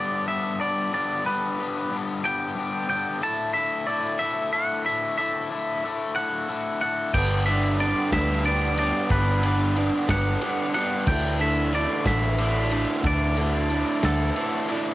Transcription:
Already playing: overdriven electric guitar G2 D3 G3 B3 D4 G4, clean electric guitar D5
0.26 overdriven electric guitar G2 D3 G3 B3 D4 G4, clean electric guitar E5
0.60 overdriven electric guitar G2 D3 G3 B3 D4 G4, clean electric guitar D5
0.92 overdriven electric guitar G2 D3 G3 B3 D4 G4, clean electric guitar D5
1.24 overdriven electric guitar G2 D3 G3 B3 D4 G4, clean electric guitar B4
1.58 overdriven electric guitar G2 D3 G3 B3 D4 G4
1.91 overdriven electric guitar G2 D3 G3 B3 D4 G4
2.23 overdriven electric guitar G2 D3 G3 B3 D4 G4, clean electric guitar G5
2.56 overdriven electric guitar G2 D3 G3 B3 D4 G4
2.88 overdriven electric guitar G2 D3 G3 B3 D4 G4, clean electric guitar G5
3.21 overdriven electric guitar D3 A3 E4 A4, clean electric guitar A5
3.54 overdriven electric guitar D3 A3 E4 A4, clean electric guitar E5
3.87 overdriven electric guitar D3 A3 E4 A4, clean electric guitar D5
4.19 overdriven electric guitar D3 A3 E4 A4, clean electric guitar E5
4.52 overdriven electric guitar D3 A3 E4 A4, clean electric guitar F#5
4.85 overdriven electric guitar D3 A3 E4 A4, clean electric guitar E5
5.18 overdriven electric guitar D3 A3 E4 A4, clean electric guitar E5
5.50 overdriven electric guitar D3 A3 E4 A4
5.84 overdriven electric guitar D3 A3 E4 A4
6.16 overdriven electric guitar D3 A3 E4 A4, clean electric guitar F#5
6.48 overdriven electric guitar D3 A3 E4 A4
6.81 overdriven electric guitar D3 A3 E4 A4, clean electric guitar F#5
7.13 picked electric bass G1, overdriven electric guitar G2 D3 G3 B3 D4 G4, clean electric guitar G5, kick, crash
7.46 overdriven electric guitar G2 D3 G3 B3 D4 G4, clean electric guitar E5, ride
7.79 overdriven electric guitar G2 D3 G3 B3 D4 G4, clean electric guitar D5, ride
8.11 picked electric bass D2, overdriven electric guitar G2 D3 G3 B3 D4 G4, clean electric guitar E5, kick, snare, ride
8.44 overdriven electric guitar G2 D3 G3 B3 D4 G4, clean electric guitar D5, ride
8.76 overdriven electric guitar G2 D3 G3 B3 D4 G4, clean electric guitar D5, ride
9.10 picked electric bass G1, overdriven electric guitar G2 D3 G3 B3 D4 G4, clean electric guitar B4, kick, ride
9.42 overdriven electric guitar G2 D3 G3 B3 D4 G4, ride
9.75 overdriven electric guitar G2 D3 G3 B3 D4 G4, ride
10.08 picked electric bass G1, overdriven electric guitar G2 D3 G3 B3 D4 G4, clean electric guitar F#5, kick, snare, ride
10.40 overdriven electric guitar G2 D3 G3 B3 D4 G4, ride
10.74 overdriven electric guitar G2 D3 G3 B3 D4 G4, clean electric guitar F#5, ride
11.07 picked electric bass D2, overdriven electric guitar D3 E3 A3 D4 E4 A4, clean electric guitar G5, kick, crash
11.39 overdriven electric guitar D3 E3 A3 D4 E4 A4, clean electric guitar E5, ride
11.73 overdriven electric guitar D3 E3 A3 D4 E4 A4, clean electric guitar D5, ride
12.06 picked electric bass A1, overdriven electric guitar D3 E3 A3 D4 E4 A4, clean electric guitar E5, kick, snare, ride
12.38 overdriven electric guitar D3 E3 A3 D4 E4 A4, ride
12.71 overdriven electric guitar D3 E3 A3 D4 E4 A4, ride
13.04 picked electric bass D2, overdriven electric guitar D3 E3 A3 D4 E4 A4, clean electric guitar D5, kick, ride
13.37 overdriven electric guitar D3 E3 A3 D4 E4 A4, ride
13.70 overdriven electric guitar D3 E3 A3 D4 E4 A4, ride
14.03 picked electric bass D2, overdriven electric guitar D3 E3 A3 D4 E4 A4, clean electric guitar A4, snare, ride
14.36 overdriven electric guitar D3 E3 A3 D4 E4 A4, ride
14.68 overdriven electric guitar D3 E3 A3 D4 E4 A4, ride

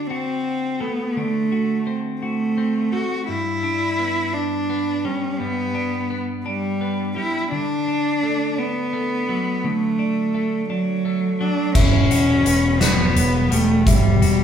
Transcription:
Already playing: clean electric guitar D3
0.10 cello C4, clean electric guitar F#4
0.80 clean electric guitar A3, cello B3
1.16 clean electric guitar D3, cello A3
1.52 clean electric guitar F#4
1.87 clean electric guitar C4
2.22 cello A3, clean electric guitar F#4
2.58 clean electric guitar C4
2.92 clean electric guitar A3, cello F#4
3.28 clean electric guitar G2, cello E4
3.63 clean electric guitar D4
3.99 clean electric guitar B3
4.33 cello D4
4.70 clean electric guitar B3
5.05 clean electric guitar G3, cello C#4
5.39 clean electric guitar G2, cello B3
5.75 clean electric guitar D4
6.10 clean electric guitar B3
6.46 cello G3, clean electric guitar D4
6.81 clean electric guitar B3
7.16 clean electric guitar G3, cello E4
7.52 clean electric guitar D3, cello D4
7.87 clean electric guitar D4
8.23 clean electric guitar A3
8.58 cello B3, clean electric guitar D4
8.93 clean electric guitar A3
9.29 clean electric guitar F#3
9.64 clean electric guitar D3, cello A3
9.99 clean electric guitar D4
10.35 clean electric guitar A3
10.70 cello F#3, clean electric guitar D4
11.05 clean electric guitar A3
11.41 clean electric guitar F#3, cello D4
11.75 picked electric bass E1, clean electric guitar E3, cello C#4, felt piano E5, kick, crash
12.10 picked electric bass E1, clean electric guitar F#4, closed hi-hat
12.45 picked electric bass E1, clean electric guitar B3, closed hi-hat
12.81 cello B3, clean electric guitar F#4, felt piano D5, snare, closed hi-hat
13.16 picked electric bass E1, clean electric guitar B3, felt piano C#5, closed hi-hat
13.51 picked electric bass E1, clean electric guitar G3, cello A3, closed hi-hat
13.86 picked electric bass E1, clean electric guitar E3, cello G3, felt piano E5, kick, closed hi-hat
14.22 picked electric bass E1, clean electric guitar F#4, closed hi-hat

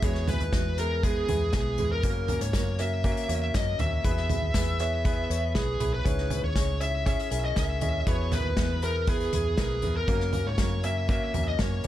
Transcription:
0.02 fingered electric bass E2, grand piano B2 G#3 B3 E4 G#4, lead electric guitar C#5, kick, closed hi-hat
0.15 snare
0.28 grand piano G#3 B3 E4 G#4, lead electric guitar B4, closed hi-hat, floor tom
0.40 fingered electric bass D#2, closed hi-hat
0.52 fingered electric bass E2, grand piano G#3 B3 E4 F#4, kick, snare, closed hi-hat
0.78 grand piano G#3 B3 E4 G#4, lead electric guitar A#4, closed hi-hat
1.03 grand piano G#3 B3 E4 G#4, lead electric guitar G#4, kick, closed hi-hat
1.28 fingered electric bass E2, grand piano G#3 B3 E4 G#4, closed hi-hat, floor tom
1.53 fingered electric bass B1, grand piano G#3 B3 E4 G#4, lead electric guitar G#4, kick, snare, closed hi-hat
1.78 fingered electric bass E2, grand piano G#3 B3 E4 G#4, closed hi-hat, floor tom
1.92 lead electric guitar A#4
2.03 fingered electric bass F#2, grand piano C#3 A#3 C#4 F#4 A#4, kick, closed hi-hat
2.28 grand piano A#3 C#4 F#4 A#4, closed hi-hat, floor tom
2.41 fingered electric bass G#2, lead electric guitar C#5, closed hi-hat
2.53 fingered electric bass F#2, grand piano A#3 C#4 F#4 A#4, kick, snare, closed hi-hat
2.79 grand piano A#3 C#4 F#4 A#4, lead electric guitar E5, closed hi-hat
3.04 grand piano A#3 C#4 F#4 A#4, kick, closed hi-hat
3.17 closed hi-hat
3.28 fingered electric bass E2, grand piano A#3 C#4 F#4 C#5, closed hi-hat
3.42 lead electric guitar E5
3.54 fingered electric bass F#2, grand piano A#3 C#4 F#4 C#5, lead electric guitar D#5, kick, snare, closed hi-hat
3.79 fingered electric bass D#2, grand piano A#3 C#4 F#4 A#4, lead electric guitar E5, closed hi-hat, floor tom
4.04 fingered electric bass E2, grand piano B2 B3 E4 G#4 B4, kick, closed hi-hat
4.17 snare
4.29 grand piano B3 E4 G#4 B4, closed hi-hat, floor tom
4.42 fingered electric bass D#2
4.54 fingered electric bass E2, grand piano B3 E4 G#4 B4, kick, snare, closed hi-hat
4.79 grand piano B3 E4 G#4 C#5, lead electric guitar E5, closed hi-hat
5.05 grand piano B3 E4 G#4 B4, kick, closed hi-hat
5.30 fingered electric bass E2, grand piano B3 E4 G#4 C#5, closed hi-hat
5.55 fingered electric bass B1, grand piano B3 E4 G#4 B4, lead electric guitar G#4, kick, snare, closed hi-hat
5.80 fingered electric bass B1, grand piano B3 E4 G#4 B4, closed hi-hat, floor tom
5.94 lead electric guitar B4
6.05 fingered electric bass C#2, grand piano G#2 C#4 E4 G#4 C#5, kick, closed hi-hat
6.18 snare
6.30 grand piano C#4 E4 G#4 C#5, closed hi-hat, floor tom
6.43 fingered electric bass D#2, lead electric guitar C#5
6.55 fingered electric bass C#2, grand piano C#4 E4 G#4 C#5, kick, snare, closed hi-hat
6.80 grand piano C#4 E4 G#4 C#5, lead electric guitar E5, closed hi-hat
7.06 grand piano C#4 E4 G#4 C#5, lead electric guitar E5, kick, closed hi-hat
7.19 closed hi-hat
7.31 fingered electric bass B1, grand piano C#4 E4 G#4 A#4, closed hi-hat
7.45 lead electric guitar D#5
7.56 fingered electric bass C#2, grand piano C#4 E4 G#4 A#4, lead electric guitar E5, kick, snare, closed hi-hat
7.81 fingered electric bass D#2, grand piano C#4 E4 G#4 D#5, closed hi-hat, floor tom
8.07 fingered electric bass E2, grand piano B2 B3 E4 G#4 B4, lead electric guitar C#5, kick, closed hi-hat
8.32 grand piano B3 E4 G#4 A#4, lead electric guitar B4, closed hi-hat, floor tom
8.44 fingered electric bass D#2
8.57 fingered electric bass E2, grand piano B3 E4 G#4 B4, kick, snare, closed hi-hat
8.82 grand piano B3 E4 G#4 B4, lead electric guitar A#4, closed hi-hat
9.07 grand piano B3 E4 G#4 B4, lead electric guitar G#4, kick, closed hi-hat
9.21 closed hi-hat
9.33 fingered electric bass E2, grand piano B3 E4 G#4 B4, closed hi-hat, floor tom
9.57 fingered electric bass B1, grand piano B3 E4 G#4 A#4, lead electric guitar G#4, kick, snare, closed hi-hat
9.82 fingered electric bass E2, grand piano B3 E4 G#4 A#4, closed hi-hat, floor tom
9.97 lead electric guitar A#4
10.08 fingered electric bass F#2, grand piano C#3 A#3 C#4 F#4 A#4, kick, closed hi-hat
10.20 snare
10.33 grand piano A#3 C#4 F#4 A#4, closed hi-hat, floor tom
10.46 fingered electric bass G#2, lead electric guitar C#5
10.58 fingered electric bass F#2, grand piano A#3 C#4 F#4 A#4, kick, snare, closed hi-hat
10.83 grand piano A#3 C#4 F#4 A#4, lead electric guitar E5, closed hi-hat
11.09 grand piano A#3 C#4 F#4 A#4, lead electric guitar E5, kick, closed hi-hat
11.34 fingered electric bass E2, grand piano A#3 C#4 F#4 A#4, closed hi-hat, floor tom
11.48 lead electric guitar D#5
11.59 fingered electric bass F#2, grand piano A#3 C#4 F#4 A#4, lead electric guitar C#5, kick, snare, closed hi-hat
11.84 grand piano C#4, closed hi-hat

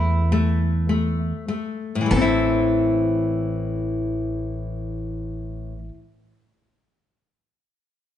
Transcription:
Already playing: upright bass E2, nylon-string guitar A3, bouzouki E4
0.32 nylon-string guitar A3
0.89 nylon-string guitar A3
1.48 nylon-string guitar A3
1.95 nylon-string guitar A2
2.01 nylon-string guitar E3
2.06 nylon-string guitar A3
2.11 upright bass A1, nylon-string guitar B3, bouzouki A4
2.16 nylon-string guitar C4
2.21 nylon-string guitar E4

